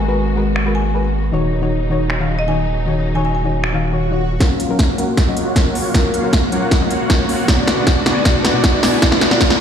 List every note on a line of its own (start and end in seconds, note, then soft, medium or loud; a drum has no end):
0.00 1.31 G#1 medium
0.00 1.30 B2 medium
0.00 1.30 G#3 medium
0.00 4.36 A#3 medium
0.00 1.29 F#4 medium
0.07 0.15 G#3 medium
0.07 0.16 F#4 medium
0.07 0.16 A#4 medium
0.07 0.16 B4 loud
0.36 0.41 G#3 medium
0.36 0.42 F#4 medium
0.36 0.42 A#4 medium
0.36 0.42 B4 loud
0.56 finger snap medium
0.64 0.70 G#3 medium
0.64 0.70 F#4 medium
0.64 0.71 A#4 medium
0.64 0.71 B4 loud
0.75 1.29 G#5 medium
0.93 1.02 G#3 medium
0.93 1.02 F#4 medium
0.93 1.03 A#4 medium
0.93 1.03 B4 medium
1.32 4.39 D#1 medium
1.32 4.37 C#3 medium
1.32 1.59 D#3 loud
1.32 4.37 F#3 medium
1.32 1.59 D#4 medium
1.32 4.37 D#4 medium
1.32 1.60 F#4 medium
1.32 1.60 C#5 loud
1.61 1.69 D#3 medium
1.61 1.70 D#4 medium
1.61 1.70 F#4 medium
1.61 1.70 C#5 loud
1.90 1.95 D#3 medium
1.90 1.95 D#4 medium
1.90 1.96 F#4 medium
1.90 1.96 C#5 loud
2.10 finger snap medium
2.19 2.24 D#3 medium
2.19 2.24 D#4 medium
2.19 2.25 F#4 medium
2.19 2.25 F5 loud
2.39 2.46 D#5 medium
2.47 2.56 D#3 medium
2.47 2.56 D#4 medium
2.47 2.57 F#4 medium
2.47 2.57 C#5 medium
2.47 2.56 G#5 medium
2.86 3.13 D#3 loud
2.86 3.13 D#4 medium
2.86 3.14 F#4 medium
2.86 3.14 C#5 loud
3.15 3.23 D#3 medium
3.15 3.23 D#4 medium
3.15 3.24 F#4 medium
3.15 3.24 C#5 loud
3.15 3.23 G#5 medium
3.25 3.31 G#5 medium
3.35 3.41 G#5 medium
3.43 3.49 D#3 medium
3.43 3.49 D#4 medium
3.43 3.50 F#4 medium
3.43 3.50 C#5 loud
3.63 finger snap medium
3.63 swell medium
3.72 3.78 D#3 medium
3.72 3.78 D#4 medium
3.72 3.78 F#4 medium
3.72 3.79 F5 loud
3.92 4.09 D#3 medium
3.92 4.09 D#4 medium
3.92 4.10 F#4 medium
3.92 4.10 C#5 medium
4.11 4.16 D#3 medium
4.11 4.16 D#4 medium
4.11 4.17 F#4 medium
4.11 4.17 C#5 medium
4.39 7.45 C#3 medium
4.39 4.67 F#3 medium
4.39 9.60 F#3 medium
4.39 7.45 A#3 medium
4.39 4.96 A#3 medium
4.39 4.67 C#4 medium
4.39 4.96 F4 medium
4.39 4.67 F4 medium
4.39 4.96 F#4 medium
4.39 4.68 A#4 loud
4.39 4.96 C#5 medium
4.39 4.96 F5 medium
4.39 kick loud
4.39 snare soft
4.39 closed hi-hat medium
4.39 riser medium
4.60 closed hi-hat medium
4.69 4.77 F#3 medium
4.69 4.77 C#4 medium
4.69 4.78 F4 medium
4.69 4.78 A#4 loud
4.79 kick loud
4.79 snare soft
4.79 closed hi-hat medium
4.97 5.03 F#3 medium
4.97 5.92 A#3 medium
4.97 5.03 C#4 medium
4.97 5.92 F4 medium
4.97 5.04 F4 medium
4.97 5.92 F#4 medium
4.97 5.04 A#4 loud
4.97 5.92 C#5 medium
4.97 5.92 F#5 loud
4.97 closed hi-hat medium
5.17 kick medium
5.17 snare medium
5.17 closed hi-hat medium
5.27 5.32 F#3 medium
5.27 5.32 C#4 medium
5.27 5.32 F4 medium
5.27 5.33 D#5 loud
5.37 closed hi-hat medium
5.55 5.64 F#3 medium
5.55 5.64 C#4 medium
5.55 5.64 F4 medium
5.55 5.65 A#4 loud
5.55 kick loud
5.55 snare medium
5.55 closed hi-hat medium
5.75 open hi-hat medium
5.93 6.21 F#3 loud
5.93 6.50 A#3 medium
5.93 6.21 C#4 medium
5.93 6.50 F4 medium
5.93 6.21 F4 medium
5.93 6.50 F#4 medium
5.93 6.22 A#4 loud
5.93 6.50 C#5 medium
5.93 6.50 F5 medium
5.93 kick medium
5.93 snare medium
5.93 closed hi-hat medium
6.14 closed hi-hat medium
6.22 6.31 F#3 medium
6.22 6.31 C#4 medium
6.22 6.31 F4 medium
6.22 6.32 A#4 loud
6.33 kick loud
6.33 snare medium
6.33 closed hi-hat medium
6.51 6.57 F#3 medium
6.51 7.46 A#3 medium
6.51 6.57 C#4 medium
6.51 7.46 F4 medium
6.51 6.57 F4 medium
6.51 7.46 F#4 medium
6.51 6.58 A#4 loud
6.51 7.46 C#5 medium
6.51 7.46 F#5 medium
6.51 closed hi-hat medium
6.71 kick medium
6.71 snare medium
6.71 closed hi-hat medium
6.80 6.86 F#3 medium
6.80 6.86 C#4 medium
6.80 6.86 F4 medium
6.80 6.86 D#5 loud
6.91 closed hi-hat medium
7.09 7.17 F#3 medium
7.09 7.18 C#4 medium
7.09 7.18 F4 medium
7.09 7.18 A#4 medium
7.09 kick loud
7.09 snare medium
7.09 closed hi-hat medium
7.29 open hi-hat medium
7.47 7.74 B2 medium
7.47 9.60 D3 medium
7.47 7.75 B3 medium
7.47 8.04 B3 medium
7.47 9.60 B3 medium
7.47 8.04 D4 medium
7.47 8.04 F#4 medium
7.47 9.60 F#4 medium
7.47 7.75 F#4 medium
7.47 8.04 D5 medium
7.47 7.75 D5 loud
7.47 8.04 F#5 medium
7.47 kick loud
7.47 snare medium
7.47 closed hi-hat medium
7.68 snare medium
7.68 closed hi-hat medium
7.76 7.84 B2 medium
7.76 7.85 B3 medium
7.76 7.85 F#4 medium
7.76 7.85 D5 loud
7.87 kick medium
7.87 snare medium
7.87 closed hi-hat medium
8.05 8.10 B2 medium
8.05 8.11 B3 medium
8.05 8.24 B3 medium
8.05 8.24 D4 medium
8.05 8.24 F#4 medium
8.05 8.11 F#4 medium
8.05 8.24 D5 medium
8.05 8.11 D5 medium
8.05 8.24 G#5 medium
8.05 snare medium
8.05 closed hi-hat medium
8.24 8.51 B2 loud
8.24 8.52 B3 medium
8.24 8.81 B3 medium
8.24 8.81 D4 medium
8.24 8.81 F#4 medium
8.24 8.52 F#4 medium
8.24 8.81 D5 medium
8.24 8.52 D5 loud
8.24 8.81 F#5 medium
8.24 kick medium
8.24 snare medium
8.24 closed hi-hat medium
8.45 snare medium
8.45 closed hi-hat medium
8.53 8.61 B2 medium
8.53 8.62 B3 medium
8.53 8.62 F#4 medium
8.53 8.62 D5 loud
8.64 kick loud
8.64 snare medium
8.64 closed hi-hat medium
8.82 8.87 B2 medium
8.82 8.88 B3 medium
8.82 9.01 B3 medium
8.82 9.01 D4 medium
8.82 9.01 F#4 medium
8.82 8.88 F#4 medium
8.82 9.01 D5 medium
8.82 8.88 D5 loud
8.82 9.01 G#5 medium
8.82 snare medium
8.82 open hi-hat medium
9.01 9.28 B2 medium
9.01 9.28 B3 medium
9.01 9.39 B3 medium
9.01 9.39 D4 medium
9.01 9.39 F#4 medium
9.01 9.29 F#4 medium
9.01 9.39 D5 medium
9.01 9.29 D5 loud
9.01 9.39 F#5 medium
9.01 kick loud
9.01 snare medium
9.01 closed hi-hat medium
9.12 snare medium
9.21 snare medium
9.21 closed hi-hat medium
9.30 9.38 B2 medium
9.30 9.39 B3 medium
9.30 9.39 F#4 medium
9.30 9.39 D5 loud
9.30 snare medium
9.40 9.60 B2 loud
9.40 9.60 B3 medium
9.40 9.60 D4 medium
9.40 9.60 F#4 medium
9.40 9.60 D5 medium
9.40 9.60 D5 loud
9.40 9.60 F#5 medium
9.40 kick loud
9.40 snare loud
9.40 closed hi-hat medium
9.50 snare medium